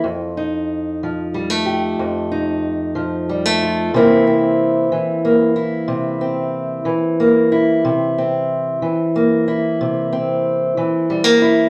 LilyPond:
\new Staff \with { instrumentName = "Steel-string acoustic guitar" } { \time 12/8 \key c \mixolydian \tempo 4. = 62 << { r8 ees'4. g16 a16 g'4 ees'4. g16 a16 f'8 | <e bes c' e'>8 c'4. bes8 e'4 c'4. bes8 e'8~ | e'8 c'4. bes8 e'4 c'4. g16 bes16 e'8 | } \\ { f,4. f4. f,4. f4. | c4. e4. c4. e4. | c4. e4. c4. e4. | } >> }